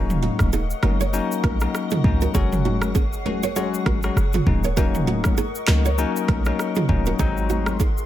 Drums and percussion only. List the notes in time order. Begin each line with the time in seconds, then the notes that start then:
0.10 mid tom, shaker
0.23 high conga
0.39 kick, cross-stick, high conga, shaker
0.53 shaker
0.70 shaker
0.83 cross-stick, high conga
1.01 shaker
1.14 shaker
1.32 shaker
1.44 kick, cross-stick, high conga
1.60 cross-stick, shaker
1.75 cross-stick, shaker
1.91 mid tom, shaker
2.04 kick, high conga, low conga
2.21 shaker
2.35 kick, low conga, shaker
2.52 mid tom, shaker
2.65 high conga
2.82 cross-stick, high conga, shaker
2.95 kick, shaker
3.13 shaker
3.26 high conga
3.43 shaker
3.56 shaker
3.74 shaker
3.86 kick, cross-stick, high conga
4.03 cross-stick, shaker
4.17 cross-stick, shaker
4.33 mid tom, shaker
4.46 kick, high conga, low conga
4.64 shaker
4.77 kick, low conga, shaker
4.95 mid tom, shaker
5.07 high conga
5.24 kick, cross-stick, high conga, shaker
5.37 shaker
5.55 shaker
5.67 cross-stick, clap, high conga
5.85 shaker
5.98 shaker
6.16 shaker
6.28 kick, cross-stick, high conga
6.45 cross-stick, shaker
6.59 cross-stick, shaker
6.75 mid tom, shaker
6.89 kick, high conga, low conga
7.06 shaker
7.19 kick, low conga, shaker
7.37 shaker
7.50 high conga, shaker
7.66 cross-stick, high conga, shaker
7.80 kick, shaker
7.98 shaker